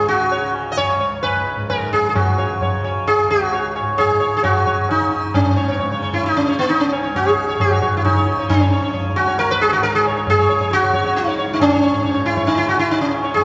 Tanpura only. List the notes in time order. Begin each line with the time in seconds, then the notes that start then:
Already playing: C#2 G#2 C#3
0.41 C#3
0.99 C#2
1.55 G#2
2.11 C#3
2.67 C#3
3.24 C#2
3.80 G#2
4.36 C#3
4.91 C#3
5.34 G#2
5.90 C#3
6.45 C#3
7.00 C#2
7.56 G#2
8.10 C#3
8.67 C#3
9.22 C#2
9.77 G#2
10.30 C#3
10.85 C#3
11.38 C#2
11.92 G#2
12.46 C#3
13.01 C#3